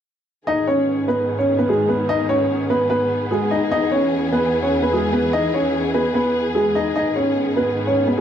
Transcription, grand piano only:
0.47 D#4 D#5
0.67 C#4 C#5
1.08 B3 B4
1.39 C#4 C#5
1.59 B3 B4
1.69 G#3 G#4
1.89 B3 B4
2.09 D#4 D#5
2.29 C#4 C#5
2.70 B3 B4
2.90 B3 B4
3.31 G#3 G#4
3.51 D#4 D#5
3.72 D#4 D#5
3.91 C#4 C#5
4.32 B3 B4
4.63 C#4 C#5
4.83 B3 B4
4.93 G#3 G#4
5.13 B3 B4
5.33 D#4 D#5
5.54 C#4 C#5
5.94 B3 B4
6.14 B3 B4
6.55 G#3 G#4
6.75 D#4 D#5
6.96 D#4 D#5
7.16 C#4 C#5
7.56 B3 B4
7.87 C#4 C#5
8.07 B3 B4
8.18 G#4

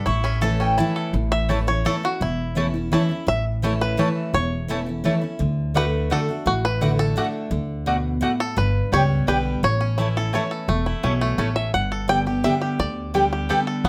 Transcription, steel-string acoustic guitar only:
0.07 A2
0.41 E3 A3 C#4 E4
0.78 E3 A3 C#4 E4
1.14 A2
1.49 E3 A3 C#4 E4
1.67 C#4 E4
1.85 E3 A3 C#4 E4
2.03 C#4 E4
2.21 E2
2.55 E3 A3 C#4 E4
2.74 C#4 E4
2.92 E3 A3 C#4 E4
3.09 C#4 E4
3.27 A2
3.62 E3 A3 C#4 E4
3.97 E3 A3 C#4 E4
4.34 E2
4.68 E3 A3 C#4 E4
4.86 C#4 E4
5.04 E3 A3 C#4 E4
5.21 C#4 E4
5.39 D3
5.74 D3 A3 D4 F#4
6.10 D3 A3 D4 F#4
6.29 D4 F#4
6.46 A2
6.81 D3 A3 D4 F#4
7.16 D3 A3 D4 F#4
7.51 D3
7.86 B2
8.21 A2
8.56 G2
8.93 G3 B3 G4
9.28 D3 G3 B3 G4
9.63 A2
9.98 E3 A3 C#4 E4
10.16 C#4 E4
10.34 E3 A3 C#4 E4
10.68 E2
11.03 B2
11.38 A2
11.75 G2
12.08 D3 G3 B3 G4
12.26 B3 G4
12.44 D3 G3 B3 G4
12.79 D3
13.14 D3 G3 B3 G4
13.49 D3 G3 B3 G4
13.85 G2

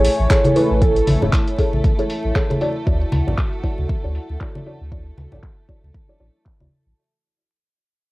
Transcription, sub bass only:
0.19 A1
0.71 A1
1.07 A1
1.22 E1
1.73 A1
2.25 A1
2.87 D2
3.12 D2
3.27 A1
3.78 D2
4.04 D2
4.30 D2
4.81 D2
5.18 D2
5.32 A1
5.83 D2
6.20 A1
6.60 D2
6.86 A1

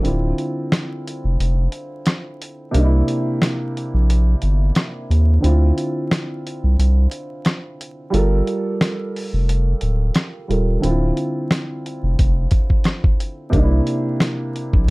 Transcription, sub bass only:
0.05 D1
1.24 F1
1.39 F1
2.74 C2
3.94 A#1
4.43 G1
5.10 D#2
5.44 D2
6.64 C2
6.79 C2
8.13 G1
9.33 F1
9.82 D1
10.49 D#1
10.83 D1
12.03 F1
12.19 F1
13.53 C2
14.73 A#1

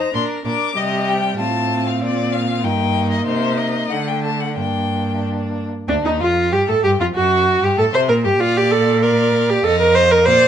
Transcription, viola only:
Already playing: D#4
0.14 D4
0.45 D4
0.76 G3
1.39 C4
2.64 A#3
3.91 A3
4.56 A#3
5.88 D4
6.05 D#4
6.20 F4
6.52 G4
6.69 A4
6.84 G4
7.00 F4
7.15 F#4
7.64 G4
7.78 A4
7.94 C5
8.08 A#4
8.26 G4
8.40 F4
8.57 G4
8.71 A4
9.02 A#4
9.50 G4
9.64 A4
9.80 A#4
9.95 C5
10.11 A#4
10.25 C5

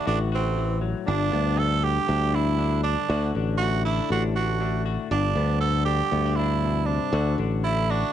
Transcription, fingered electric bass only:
0.07 A1
1.08 G1
1.33 D2
2.09 D2
3.10 D2
3.35 A1
4.10 A1
5.11 G1
5.35 D2
6.12 D2
7.13 D2
7.38 A1

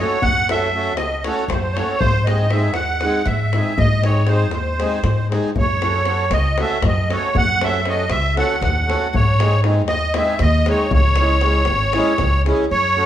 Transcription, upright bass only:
0.22 F#2
0.97 C#2
1.48 F#2
2.01 G#2
2.75 D#2
3.26 G#2
3.78 G#2
4.52 D#2
5.03 G#2
5.55 F#2
6.30 C#2
6.82 F#2
7.35 F#2
8.09 C#2
8.61 D#2
9.13 G#2
9.87 D#2
10.40 D#2
10.91 C#2
11.67 G#1
12.19 C#2
12.71 F#2

